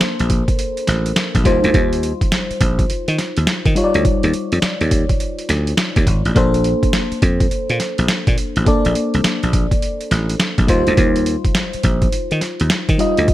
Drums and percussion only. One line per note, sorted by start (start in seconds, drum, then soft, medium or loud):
0.01 snare loud
0.01 closed hi-hat medium
0.19 closed hi-hat soft
0.30 kick medium
0.30 closed hi-hat medium
0.48 kick medium
0.48 closed hi-hat soft
0.59 closed hi-hat medium
0.77 closed hi-hat soft
0.87 snare medium
0.87 closed hi-hat medium
1.06 closed hi-hat medium
1.16 snare loud
1.16 closed hi-hat medium
1.35 kick loud
1.35 closed hi-hat medium
1.45 kick medium
1.45 closed hi-hat medium
1.64 closed hi-hat soft
1.74 kick loud
1.74 closed hi-hat medium
1.93 closed hi-hat medium
2.03 closed hi-hat medium
2.21 kick medium
2.21 closed hi-hat soft
2.32 snare loud
2.32 closed hi-hat medium
2.51 closed hi-hat soft
2.61 kick medium
2.61 closed hi-hat medium
2.79 kick medium
2.79 closed hi-hat soft
2.90 closed hi-hat medium
3.08 closed hi-hat soft
3.18 snare medium
3.18 closed hi-hat medium
3.37 closed hi-hat medium
3.47 snare loud
3.47 closed hi-hat medium
3.66 kick loud
3.66 closed hi-hat medium
3.76 closed hi-hat medium
3.94 closed hi-hat soft
4.05 kick loud
4.05 closed hi-hat medium
4.23 closed hi-hat soft
4.33 closed hi-hat medium
4.52 closed hi-hat soft
4.62 snare loud
4.62 closed hi-hat medium
4.81 closed hi-hat soft
4.91 kick medium
4.91 closed hi-hat medium
5.09 kick medium
5.09 closed hi-hat soft
5.20 closed hi-hat medium
5.39 closed hi-hat soft
5.49 snare medium
5.49 closed hi-hat medium
5.67 closed hi-hat medium
5.77 snare loud
5.77 closed hi-hat medium
5.96 kick loud
5.96 closed hi-hat medium
6.07 kick medium
6.07 closed hi-hat medium
6.25 closed hi-hat soft
6.36 kick loud
6.36 closed hi-hat medium
6.54 closed hi-hat medium
6.64 closed hi-hat medium
6.83 kick medium
6.83 closed hi-hat soft
6.93 snare loud
6.93 closed hi-hat medium
7.12 closed hi-hat soft
7.22 kick medium
7.22 closed hi-hat medium
7.40 kick loud
7.40 closed hi-hat soft
7.51 closed hi-hat medium
7.69 closed hi-hat soft
7.80 snare medium
7.80 closed hi-hat medium
7.98 closed hi-hat medium
8.08 snare loud
8.08 closed hi-hat medium
8.27 kick loud
8.27 closed hi-hat medium
8.38 closed hi-hat medium
8.56 closed hi-hat soft
8.66 kick loud
8.66 closed hi-hat medium
8.85 closed hi-hat medium
8.95 closed hi-hat medium
9.14 closed hi-hat soft
9.24 snare loud
9.24 closed hi-hat medium
9.43 closed hi-hat soft
9.53 kick medium
9.53 closed hi-hat medium
9.71 kick medium
9.71 closed hi-hat medium
9.82 closed hi-hat medium
10.01 closed hi-hat soft
10.11 snare medium
10.11 closed hi-hat medium
10.29 closed hi-hat medium
10.40 snare loud
10.40 closed hi-hat medium
10.58 kick loud
10.58 closed hi-hat medium
10.68 kick medium
10.68 closed hi-hat medium
10.87 closed hi-hat soft
10.97 kick loud
10.97 closed hi-hat medium
11.16 closed hi-hat medium
11.26 closed hi-hat medium
11.45 kick medium
11.45 closed hi-hat soft
11.55 snare loud
11.55 closed hi-hat medium
11.73 closed hi-hat soft
11.83 kick medium
11.83 closed hi-hat medium
12.02 kick medium
12.02 closed hi-hat soft
12.12 closed hi-hat medium
12.31 closed hi-hat soft
12.41 snare medium
12.41 closed hi-hat medium
12.60 closed hi-hat medium
12.70 snare loud
12.70 closed hi-hat medium
12.89 kick loud
12.89 closed hi-hat medium
12.99 closed hi-hat medium
13.17 closed hi-hat soft
13.28 kick loud
13.28 closed hi-hat medium